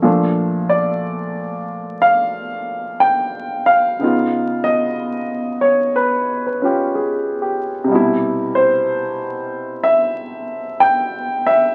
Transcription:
0.02 4.01 A#2 medium
0.02 4.02 F3 soft
0.02 4.02 A3 soft
0.02 4.02 D4 medium
0.69 1.99 D5 medium
2.02 2.98 F5 medium
3.00 3.70 G5 medium
3.66 4.62 F5 medium
3.99 7.89 C#3 soft
3.99 7.90 B3 soft
3.99 7.90 D#4 soft
4.04 6.62 F4 medium
4.64 5.59 D#5 medium
5.61 5.69 C#5 medium
5.96 6.45 B4 medium
6.47 7.14 B4 soft
6.62 7.90 C#4 soft
6.62 7.91 F4 soft
6.62 7.40 G4 soft
6.95 7.71 G#4 soft
7.42 8.10 G4 soft
7.84 11.75 C3 medium
7.84 11.75 G3 soft
7.91 11.75 B2 soft
7.91 11.75 E4 medium
8.55 9.80 C5 medium
9.83 10.85 E5 medium
10.80 11.43 G5 medium
11.46 11.75 E5 medium

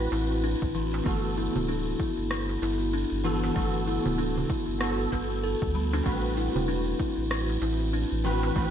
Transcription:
0.00 1.08 C4 medium
0.00 1.06 F#4 medium
0.00 1.08 B4 medium
0.12 0.55 A1 loud
0.12 0.42 E4 medium
0.12 darbuka tek medium
0.12 cabasa medium
0.31 cabasa soft
0.44 0.74 D4 medium
0.44 cabasa soft
0.62 1.01 A1 medium
0.62 kick loud
0.62 cabasa soft
0.74 1.05 E3 medium
0.74 cabasa medium
0.93 darbuka ka soft
0.93 darbuka tek medium
0.93 cabasa soft
1.04 1.49 G1 medium
1.04 1.36 A3 medium
1.04 3.21 B3 medium
1.04 3.22 F#4 medium
1.04 kick loud
1.04 cabasa soft
1.08 3.23 A4 medium
1.25 cabasa soft
1.37 1.67 E4 medium
1.37 cabasa medium
1.55 1.95 D1 medium
1.55 darbuka dum medium
1.55 cabasa soft
1.68 1.98 D4 medium
1.68 cabasa soft
1.99 2.17 E4 medium
1.99 kick medium
1.99 cabasa medium
2.18 2.58 G1 medium
2.18 cabasa soft
2.31 2.42 B3 medium
2.31 cross-stick medium
2.31 cabasa soft
2.49 darbuka ka medium
2.49 cabasa soft
2.62 3.05 G1 loud
2.62 2.92 E4 medium
2.62 darbuka tek medium
2.62 cabasa medium
2.81 cabasa soft
2.93 3.23 D4 medium
2.93 cabasa soft
3.12 3.51 G1 medium
3.12 cabasa soft
3.24 3.55 E3 loud
3.24 3.52 B3 medium
3.24 3.53 F#4 medium
3.24 3.53 A4 medium
3.24 cabasa medium
3.43 darbuka ka soft
3.43 darbuka tek medium
3.43 cabasa soft
3.54 3.99 G1 medium
3.54 3.86 A3 medium
3.54 3.85 B3 medium
3.54 3.86 F#4 medium
3.54 3.86 A4 medium
3.54 kick loud
3.54 cabasa soft
3.75 cabasa soft
3.87 4.17 E4 medium
3.87 cabasa medium
4.05 4.45 D1 loud
4.05 darbuka ka soft
4.05 darbuka tek soft
4.05 darbuka dum loud
4.05 cabasa soft
4.18 4.48 D4 medium
4.18 cabasa soft
4.37 darbuka dum medium
4.49 4.67 E4 medium
4.49 kick loud
4.49 cabasa medium
4.68 5.08 G1 medium
4.68 cabasa soft
4.78 6.02 B3 medium
4.78 4.92 B3 medium
4.78 6.03 F#4 medium
4.78 cross-stick medium
4.78 cabasa soft
4.83 6.04 A4 medium
4.99 cabasa soft
5.12 5.55 G1 loud
5.12 5.29 B3 medium
5.12 kick medium
5.12 darbuka tek medium
5.12 cabasa medium
5.31 cabasa soft
5.43 5.54 A4 medium
5.43 cabasa soft
5.62 6.01 D2 medium
5.62 kick loud
5.62 cabasa soft
5.75 5.92 G3 medium
5.75 cabasa medium
5.93 6.05 D4 medium
5.93 darbuka ka soft
5.93 darbuka tek medium
5.93 cabasa soft
6.04 6.49 A1 medium
6.04 6.36 A3 medium
6.04 8.21 C4 medium
6.04 8.22 F#4 medium
6.04 kick loud
6.04 cabasa soft
6.08 8.23 B4 medium
6.25 cabasa soft
6.37 6.67 E4 medium
6.37 cabasa medium
6.55 6.95 E1 loud
6.55 darbuka dum medium
6.55 cabasa soft
6.68 6.98 D4 medium
6.68 cabasa soft
6.99 7.17 E4 medium
6.99 kick medium
6.99 cabasa medium
7.18 7.57 A1 medium
7.18 cabasa soft
7.31 7.41 C4 medium
7.31 cross-stick medium
7.31 cabasa soft
7.49 darbuka ka soft
7.49 cabasa soft
7.62 8.05 A1 loud
7.62 7.92 E4 medium
7.62 darbuka tek medium
7.62 cabasa medium
7.81 cabasa soft
7.93 8.23 D4 medium
7.93 cabasa soft
8.12 8.51 A1 loud
8.12 cabasa soft
8.24 8.55 E3 loud
8.24 8.52 C4 medium
8.24 8.53 F#4 medium
8.24 8.54 B4 medium
8.24 cabasa medium
8.43 darbuka ka soft
8.43 darbuka tek medium
8.43 cabasa soft
8.55 8.71 A1 medium
8.55 8.71 A3 medium
8.55 8.71 C4 medium
8.55 8.71 F#4 medium
8.55 8.71 B4 medium
8.55 kick loud
8.55 cabasa soft

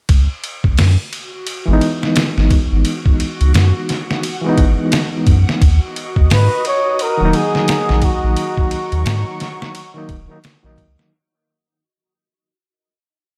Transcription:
0.09 0.28 C#2 medium
0.09 11.15 F#4 medium
0.09 kick loud
0.09 ride medium
0.44 ride medium
0.64 0.77 C#2 medium
0.64 kick medium
0.78 0.97 F#2 medium
0.78 snare loud
0.78 open hi-hat medium
1.13 ride medium
1.47 ride medium
1.66 1.80 G#1 medium
1.66 4.38 E3 medium
1.66 4.39 G#3 medium
1.71 4.40 B3 medium
1.71 4.42 D#4 medium
1.81 ride medium
2.03 snare soft
2.16 snare loud
2.16 ride medium
2.37 2.50 G#1 loud
2.37 snare soft
2.50 kick medium
2.50 ride medium
2.72 2.84 G#1 medium
2.85 ride medium
3.06 kick medium
3.20 ride medium
3.41 3.53 C#2 medium
3.41 ride soft
3.54 3.73 F#2 loud
3.54 snare loud
3.54 ride medium
3.89 snare soft
3.89 ride medium
4.11 snare soft
4.23 ride medium
4.41 5.58 E3 medium
4.41 5.60 G#3 medium
4.46 5.61 B3 medium
4.46 5.62 D#4 medium
4.58 4.76 G#1 loud
4.58 kick medium
4.58 ride medium
4.92 snare loud
4.92 ride medium
5.27 5.45 F#2 loud
5.27 kick medium
5.27 ride medium
5.49 snare medium
5.61 5.80 D#2 medium
5.61 11.09 D#5 medium
5.61 11.09 F#5 medium
5.61 11.09 A#5 medium
5.61 8.34 D#6 medium
5.61 kick loud
5.61 ride medium
5.96 ride medium
6.16 6.29 D#2 medium
6.16 kick medium
6.30 6.49 G#2 loud
6.30 6.64 B4 loud
6.30 snare loud
6.30 open hi-hat medium
6.65 7.04 C#5 loud
6.65 ride medium
6.99 7.38 A#4 loud
6.99 ride medium
7.17 7.33 D#1 medium
7.17 9.90 D#3 medium
7.17 9.91 F#3 medium
7.23 9.92 A#3 medium
7.23 9.93 D#4 loud
7.33 8.06 G#4 loud
7.33 ride medium
7.55 snare soft
7.68 snare loud
7.68 ride medium
7.89 8.01 A#1 loud
7.89 snare soft
8.02 9.42 F#4 medium
8.02 kick medium
8.02 ride medium
8.24 8.36 A#1 medium
8.36 11.10 C#6 medium
8.36 ride medium
8.57 kick loud
8.71 ride medium
8.92 9.05 D#2 medium
8.92 ride soft
9.06 9.24 G#2 loud
9.06 snare loud
9.06 ride medium
9.40 snare soft
9.40 ride medium
9.62 snare soft
9.75 ride medium
9.94 10.25 D#3 medium
9.94 10.26 F#3 medium
9.94 10.27 A#3 medium
9.94 10.27 D#4 medium
10.09 10.28 D#1 loud
10.09 kick loud
10.09 ride medium
10.28 10.36 D#3 medium
10.28 10.37 F#3 medium
10.28 10.38 A#3 medium
10.28 10.38 D#4 medium
10.44 snare loud
10.44 ride medium
10.63 10.77 A#1 medium
10.63 11.10 D#3 loud
10.63 11.11 F#3 medium
10.63 11.12 A#3 medium
10.63 11.12 D#4 loud
10.78 10.97 C#2 medium
10.78 kick medium
10.78 ride medium
10.99 snare medium

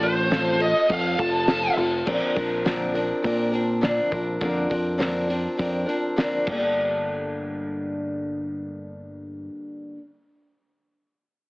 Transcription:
0.00 0.72 A1 loud
0.00 0.29 C4 medium
0.00 0.30 F4 medium
0.00 0.30 A4 medium
0.00 0.63 C5 medium
0.00 crash medium
0.29 0.59 F3 medium
0.29 0.60 C4 medium
0.29 0.59 F4 medium
0.29 0.58 A4 medium
0.29 snare loud
0.29 crash medium
0.59 0.88 C4 soft
0.59 0.89 F4 soft
0.59 0.89 A4 medium
0.59 0.91 D#5 medium
0.59 crash medium
0.88 1.15 F2 loud
0.88 1.18 F3 medium
0.88 1.18 C4 medium
0.88 1.18 F4 medium
0.88 1.17 A4 medium
0.88 kick loud
0.88 crash medium
0.92 1.18 F5 loud
1.18 1.47 C4 medium
1.18 1.48 F4 medium
1.18 1.48 A4 medium
1.18 1.74 A5 loud
1.18 kick medium
1.18 crash medium
1.48 1.77 F3 medium
1.48 1.77 C4 medium
1.48 1.77 F4 medium
1.48 1.75 A4 medium
1.48 snare loud
1.48 crash medium
1.76 2.02 F1 medium
1.76 2.06 C4 medium
1.76 2.07 F4 medium
1.76 2.06 A4 medium
1.76 crash medium
2.06 2.19 A#1 medium
2.06 2.35 A#2 medium
2.06 2.36 D3 medium
2.06 2.36 F3 medium
2.06 2.36 C4 loud
2.06 2.35 D4 medium
2.06 2.34 A#4 loud
2.06 kick loud
2.06 crash medium
2.35 3.11 A#1 medium
2.35 2.64 F3 soft
2.35 2.65 C4 medium
2.35 2.65 D4 medium
2.35 2.65 A#4 medium
2.35 kick medium
2.35 open hi-hat soft
2.64 2.94 A#2 medium
2.64 2.94 D3 medium
2.64 2.94 F3 medium
2.64 2.95 C4 medium
2.64 2.94 D4 medium
2.64 2.93 A#4 medium
2.64 snare loud
2.64 open hi-hat medium
2.94 3.21 F3 soft
2.94 3.23 C4 soft
2.94 3.24 D4 soft
2.94 3.23 A#4 soft
2.94 open hi-hat soft
3.22 3.99 A#2 medium
3.22 3.52 F3 medium
3.22 3.53 C4 medium
3.22 3.52 D4 medium
3.22 3.51 A#4 medium
3.22 kick medium
3.22 open hi-hat medium
3.52 3.81 F3 soft
3.52 3.82 C4 medium
3.52 3.82 D4 medium
3.52 3.82 A#4 medium
3.52 open hi-hat soft
3.81 4.11 A#2 medium
3.81 4.11 D3 medium
3.81 4.11 F3 medium
3.81 4.12 C4 medium
3.81 4.11 D4 medium
3.81 4.10 A#4 medium
3.81 snare loud
3.81 open hi-hat medium
4.11 4.37 A#1 medium
4.11 4.40 F3 soft
4.11 4.41 C4 medium
4.11 4.41 D4 medium
4.11 4.41 A#4 medium
4.11 kick medium
4.11 open hi-hat soft
4.41 4.66 F2 medium
4.41 4.70 A#2 medium
4.41 4.70 D3 medium
4.41 4.71 F3 medium
4.41 4.70 C4 medium
4.41 4.70 D4 medium
4.41 4.68 A#4 medium
4.41 kick loud
4.41 open hi-hat medium
4.70 5.46 F2 medium
4.70 4.97 F3 soft
4.70 4.97 C4 medium
4.70 4.98 D4 medium
4.70 4.98 A#4 medium
4.70 kick medium
4.70 open hi-hat soft
4.98 5.28 A#2 medium
4.98 5.28 D3 medium
4.98 5.29 F3 medium
4.98 5.29 C4 medium
4.98 5.28 D4 medium
4.98 5.26 A#4 medium
4.98 snare medium
4.98 open hi-hat medium
5.28 5.56 F3 soft
5.28 5.57 C4 medium
5.28 5.58 D4 soft
5.28 5.58 A#4 soft
5.28 open hi-hat soft
5.57 5.84 F2 medium
5.57 5.88 F3 medium
5.57 5.87 C4 medium
5.57 5.86 D4 medium
5.57 5.85 A#4 medium
5.57 kick medium
5.57 open hi-hat medium
5.86 6.16 F3 soft
5.86 6.17 C4 soft
5.86 6.16 D4 medium
5.86 6.17 A#4 medium
5.86 open hi-hat soft
6.16 6.44 A#2 medium
6.16 6.46 D3 medium
6.16 6.47 F3 medium
6.16 6.48 C4 medium
6.16 6.48 D4 medium
6.16 6.48 A#4 medium
6.16 snare medium
6.16 open hi-hat medium
6.45 9.48 G1 medium
6.45 9.95 G2 medium
6.45 9.97 D3 medium
6.45 9.98 G3 medium
6.45 kick medium
6.45 crash medium
6.49 9.99 A#3 medium
6.49 10.01 D4 medium
6.49 10.02 A4 medium

